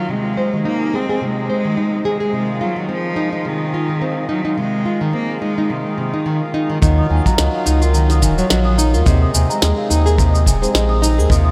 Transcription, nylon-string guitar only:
0, 0, Header, 1, 2, 480
1, 0, Start_track
1, 0, Tempo, 560748
1, 80, Time_signature, 4, 2, 24, 8
1, 9857, End_track
2, 0, Start_track
2, 0, Title_t, "Nylon-string guitar"
2, 0, Program_c, 0, 24
2, 76, Note_on_c, 0, 48, 67
2, 307, Note_off_c, 0, 48, 0
2, 320, Note_on_c, 0, 72, 61
2, 441, Note_off_c, 0, 72, 0
2, 456, Note_on_c, 0, 51, 59
2, 550, Note_off_c, 0, 51, 0
2, 559, Note_on_c, 0, 63, 71
2, 789, Note_off_c, 0, 63, 0
2, 801, Note_on_c, 0, 68, 80
2, 926, Note_off_c, 0, 68, 0
2, 936, Note_on_c, 0, 68, 65
2, 1030, Note_off_c, 0, 68, 0
2, 1040, Note_on_c, 0, 48, 70
2, 1269, Note_off_c, 0, 48, 0
2, 1280, Note_on_c, 0, 72, 60
2, 1401, Note_off_c, 0, 72, 0
2, 1412, Note_on_c, 0, 51, 62
2, 1508, Note_off_c, 0, 51, 0
2, 1517, Note_on_c, 0, 63, 70
2, 1748, Note_off_c, 0, 63, 0
2, 1756, Note_on_c, 0, 68, 86
2, 1876, Note_off_c, 0, 68, 0
2, 1886, Note_on_c, 0, 68, 65
2, 1985, Note_off_c, 0, 68, 0
2, 1994, Note_on_c, 0, 48, 66
2, 2226, Note_off_c, 0, 48, 0
2, 2233, Note_on_c, 0, 65, 66
2, 2358, Note_off_c, 0, 65, 0
2, 2365, Note_on_c, 0, 51, 61
2, 2464, Note_off_c, 0, 51, 0
2, 2470, Note_on_c, 0, 60, 73
2, 2704, Note_off_c, 0, 60, 0
2, 2707, Note_on_c, 0, 63, 84
2, 2837, Note_off_c, 0, 63, 0
2, 2847, Note_on_c, 0, 63, 62
2, 2946, Note_off_c, 0, 63, 0
2, 2954, Note_on_c, 0, 48, 67
2, 3186, Note_off_c, 0, 48, 0
2, 3200, Note_on_c, 0, 65, 68
2, 3321, Note_off_c, 0, 65, 0
2, 3330, Note_on_c, 0, 51, 68
2, 3427, Note_off_c, 0, 51, 0
2, 3436, Note_on_c, 0, 60, 70
2, 3667, Note_off_c, 0, 60, 0
2, 3671, Note_on_c, 0, 63, 84
2, 3796, Note_off_c, 0, 63, 0
2, 3807, Note_on_c, 0, 63, 65
2, 3905, Note_off_c, 0, 63, 0
2, 3916, Note_on_c, 0, 48, 70
2, 4147, Note_off_c, 0, 48, 0
2, 4156, Note_on_c, 0, 65, 64
2, 4279, Note_off_c, 0, 65, 0
2, 4289, Note_on_c, 0, 51, 67
2, 4386, Note_off_c, 0, 51, 0
2, 4394, Note_on_c, 0, 60, 73
2, 4626, Note_off_c, 0, 60, 0
2, 4637, Note_on_c, 0, 63, 87
2, 4766, Note_off_c, 0, 63, 0
2, 4776, Note_on_c, 0, 63, 64
2, 4870, Note_off_c, 0, 63, 0
2, 4879, Note_on_c, 0, 48, 66
2, 5000, Note_off_c, 0, 48, 0
2, 5117, Note_on_c, 0, 48, 68
2, 5239, Note_off_c, 0, 48, 0
2, 5252, Note_on_c, 0, 63, 87
2, 5348, Note_off_c, 0, 63, 0
2, 5357, Note_on_c, 0, 51, 72
2, 5479, Note_off_c, 0, 51, 0
2, 5598, Note_on_c, 0, 63, 94
2, 5720, Note_off_c, 0, 63, 0
2, 5731, Note_on_c, 0, 51, 82
2, 5826, Note_off_c, 0, 51, 0
2, 5836, Note_on_c, 0, 51, 96
2, 6067, Note_off_c, 0, 51, 0
2, 6076, Note_on_c, 0, 51, 73
2, 6199, Note_off_c, 0, 51, 0
2, 6215, Note_on_c, 0, 54, 74
2, 6274, Note_off_c, 0, 54, 0
2, 6317, Note_on_c, 0, 54, 86
2, 6548, Note_off_c, 0, 54, 0
2, 6556, Note_on_c, 0, 63, 101
2, 6679, Note_off_c, 0, 63, 0
2, 6691, Note_on_c, 0, 65, 68
2, 6788, Note_off_c, 0, 65, 0
2, 6798, Note_on_c, 0, 51, 91
2, 7028, Note_off_c, 0, 51, 0
2, 7041, Note_on_c, 0, 51, 69
2, 7161, Note_off_c, 0, 51, 0
2, 7177, Note_on_c, 0, 54, 79
2, 7236, Note_off_c, 0, 54, 0
2, 7278, Note_on_c, 0, 54, 84
2, 7508, Note_off_c, 0, 54, 0
2, 7517, Note_on_c, 0, 63, 100
2, 7639, Note_off_c, 0, 63, 0
2, 7653, Note_on_c, 0, 65, 79
2, 7749, Note_off_c, 0, 65, 0
2, 7753, Note_on_c, 0, 48, 101
2, 7986, Note_off_c, 0, 48, 0
2, 7998, Note_on_c, 0, 48, 75
2, 8120, Note_off_c, 0, 48, 0
2, 8133, Note_on_c, 0, 56, 74
2, 8194, Note_off_c, 0, 56, 0
2, 8236, Note_on_c, 0, 56, 81
2, 8467, Note_off_c, 0, 56, 0
2, 8474, Note_on_c, 0, 63, 101
2, 8598, Note_off_c, 0, 63, 0
2, 8610, Note_on_c, 0, 68, 74
2, 8707, Note_off_c, 0, 68, 0
2, 8715, Note_on_c, 0, 48, 95
2, 8943, Note_off_c, 0, 48, 0
2, 8954, Note_on_c, 0, 48, 82
2, 9078, Note_off_c, 0, 48, 0
2, 9090, Note_on_c, 0, 56, 77
2, 9152, Note_off_c, 0, 56, 0
2, 9197, Note_on_c, 0, 56, 81
2, 9428, Note_off_c, 0, 56, 0
2, 9434, Note_on_c, 0, 63, 105
2, 9558, Note_off_c, 0, 63, 0
2, 9573, Note_on_c, 0, 68, 81
2, 9669, Note_off_c, 0, 68, 0
2, 9676, Note_on_c, 0, 48, 103
2, 9857, Note_off_c, 0, 48, 0
2, 9857, End_track
0, 0, End_of_file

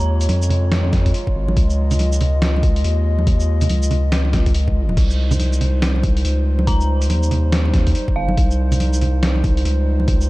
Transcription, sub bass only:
0, 0, Header, 1, 2, 480
1, 0, Start_track
1, 0, Tempo, 425532
1, 1768, Time_signature, 4, 2, 24, 8
1, 11614, End_track
2, 0, Start_track
2, 0, Title_t, "Sub bass"
2, 0, Program_c, 0, 38
2, 0, Note_on_c, 0, 39, 101
2, 312, Note_off_c, 0, 39, 0
2, 326, Note_on_c, 0, 41, 93
2, 1272, Note_off_c, 0, 41, 0
2, 1527, Note_on_c, 0, 32, 97
2, 1753, Note_off_c, 0, 32, 0
2, 1766, Note_on_c, 0, 37, 98
2, 3192, Note_off_c, 0, 37, 0
2, 3208, Note_on_c, 0, 39, 97
2, 4153, Note_off_c, 0, 39, 0
2, 4166, Note_on_c, 0, 37, 95
2, 5112, Note_off_c, 0, 37, 0
2, 5127, Note_on_c, 0, 37, 102
2, 5592, Note_off_c, 0, 37, 0
2, 5608, Note_on_c, 0, 36, 98
2, 7033, Note_off_c, 0, 36, 0
2, 7050, Note_on_c, 0, 37, 98
2, 7994, Note_off_c, 0, 37, 0
2, 8008, Note_on_c, 0, 39, 97
2, 8953, Note_off_c, 0, 39, 0
2, 9207, Note_on_c, 0, 31, 100
2, 9433, Note_off_c, 0, 31, 0
2, 9448, Note_on_c, 0, 36, 99
2, 10873, Note_off_c, 0, 36, 0
2, 10887, Note_on_c, 0, 37, 104
2, 11614, Note_off_c, 0, 37, 0
2, 11614, End_track
0, 0, End_of_file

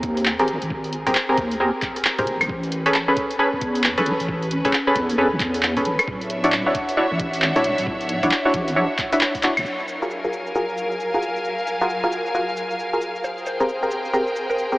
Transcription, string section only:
0, 0, Header, 1, 2, 480
1, 0, Start_track
1, 0, Tempo, 447761
1, 755, Time_signature, 4, 2, 24, 8
1, 15844, End_track
2, 0, Start_track
2, 0, Title_t, "String section"
2, 0, Program_c, 0, 48
2, 0, Note_on_c, 0, 60, 75
2, 0, Note_on_c, 0, 68, 71
2, 0, Note_on_c, 0, 70, 73
2, 2675, Note_off_c, 0, 60, 0
2, 2675, Note_off_c, 0, 70, 0
2, 2675, Note_on_c, 0, 61, 84
2, 2676, Note_off_c, 0, 68, 0
2, 2762, Note_on_c, 0, 71, 81
2, 6514, Note_off_c, 0, 61, 0
2, 6515, Note_on_c, 0, 62, 69
2, 6652, Note_on_c, 0, 73, 78
2, 6688, Note_on_c, 0, 76, 84
2, 6910, Note_on_c, 0, 78, 71
2, 7467, Note_off_c, 0, 71, 0
2, 10354, Note_off_c, 0, 76, 0
2, 10354, Note_on_c, 0, 54, 70
2, 10355, Note_off_c, 0, 62, 0
2, 10356, Note_off_c, 0, 78, 0
2, 10569, Note_on_c, 0, 70, 81
2, 10729, Note_on_c, 0, 80, 74
2, 10836, Note_on_c, 0, 77, 80
2, 11247, Note_off_c, 0, 73, 0
2, 14193, Note_off_c, 0, 80, 0
2, 14194, Note_off_c, 0, 54, 0
2, 14194, Note_on_c, 0, 68, 72
2, 14255, Note_on_c, 0, 72, 68
2, 14355, Note_on_c, 0, 79, 72
2, 14670, Note_on_c, 0, 82, 65
2, 15391, Note_off_c, 0, 70, 0
2, 15753, Note_off_c, 0, 77, 0
2, 15844, Note_off_c, 0, 68, 0
2, 15844, Note_off_c, 0, 72, 0
2, 15844, Note_off_c, 0, 79, 0
2, 15844, Note_off_c, 0, 82, 0
2, 15844, End_track
0, 0, End_of_file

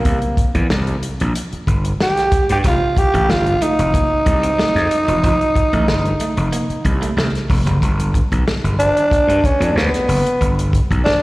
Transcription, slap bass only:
0, 0, Header, 1, 3, 480
1, 0, Start_track
1, 0, Tempo, 647249
1, 40, Time_signature, 4, 2, 24, 8
1, 8324, End_track
2, 0, Start_track
2, 0, Title_t, "Slap bass"
2, 0, Program_c, 0, 36
2, 39, Note_on_c, 0, 36, 106
2, 135, Note_off_c, 0, 36, 0
2, 405, Note_on_c, 0, 40, 84
2, 490, Note_off_c, 0, 40, 0
2, 526, Note_on_c, 0, 36, 100
2, 704, Note_off_c, 0, 36, 0
2, 897, Note_on_c, 0, 34, 89
2, 978, Note_off_c, 0, 34, 0
2, 1240, Note_on_c, 0, 31, 90
2, 1420, Note_off_c, 0, 31, 0
2, 1852, Note_on_c, 0, 43, 83
2, 1935, Note_off_c, 0, 43, 0
2, 1961, Note_on_c, 0, 29, 104
2, 2056, Note_off_c, 0, 29, 0
2, 2328, Note_on_c, 0, 33, 83
2, 2441, Note_on_c, 0, 31, 96
2, 2452, Note_off_c, 0, 33, 0
2, 2621, Note_off_c, 0, 31, 0
2, 2809, Note_on_c, 0, 29, 90
2, 2893, Note_off_c, 0, 29, 0
2, 3158, Note_on_c, 0, 36, 98
2, 3338, Note_off_c, 0, 36, 0
2, 3524, Note_on_c, 0, 41, 102
2, 3610, Note_off_c, 0, 41, 0
2, 3765, Note_on_c, 0, 28, 84
2, 3851, Note_off_c, 0, 28, 0
2, 3883, Note_on_c, 0, 29, 110
2, 3977, Note_off_c, 0, 29, 0
2, 4248, Note_on_c, 0, 33, 85
2, 4362, Note_on_c, 0, 31, 100
2, 4374, Note_off_c, 0, 33, 0
2, 4541, Note_off_c, 0, 31, 0
2, 4724, Note_on_c, 0, 29, 102
2, 4810, Note_off_c, 0, 29, 0
2, 5079, Note_on_c, 0, 36, 104
2, 5258, Note_off_c, 0, 36, 0
2, 5314, Note_on_c, 0, 36, 91
2, 5411, Note_off_c, 0, 36, 0
2, 5559, Note_on_c, 0, 29, 95
2, 5654, Note_off_c, 0, 29, 0
2, 5679, Note_on_c, 0, 30, 80
2, 5766, Note_off_c, 0, 30, 0
2, 5800, Note_on_c, 0, 31, 99
2, 6074, Note_off_c, 0, 31, 0
2, 6168, Note_on_c, 0, 35, 73
2, 6251, Note_off_c, 0, 35, 0
2, 6406, Note_on_c, 0, 31, 84
2, 6585, Note_off_c, 0, 31, 0
2, 6879, Note_on_c, 0, 43, 75
2, 6966, Note_off_c, 0, 43, 0
2, 7122, Note_on_c, 0, 41, 88
2, 7207, Note_off_c, 0, 41, 0
2, 7234, Note_on_c, 0, 38, 82
2, 7330, Note_off_c, 0, 38, 0
2, 7478, Note_on_c, 0, 30, 87
2, 7573, Note_off_c, 0, 30, 0
2, 7718, Note_on_c, 0, 31, 105
2, 7993, Note_off_c, 0, 31, 0
2, 8088, Note_on_c, 0, 35, 76
2, 8171, Note_off_c, 0, 35, 0
2, 8324, End_track
3, 0, Start_track
3, 0, Title_t, "Muted slap bass strokes"
3, 1134, Note_on_c, 9, 29, 43
3, 1208, Note_off_c, 9, 29, 0
3, 1720, Note_on_c, 9, 29, 45
3, 1794, Note_off_c, 9, 29, 0
3, 3050, Note_on_c, 9, 29, 47
3, 3124, Note_off_c, 9, 29, 0
3, 4967, Note_on_c, 9, 29, 52
3, 5041, Note_off_c, 9, 29, 0
3, 6758, Note_on_c, 9, 29, 43
3, 6832, Note_off_c, 9, 29, 0
3, 8199, Note_on_c, 9, 29, 52
3, 8273, Note_off_c, 9, 29, 0
3, 8324, End_track
0, 0, End_of_file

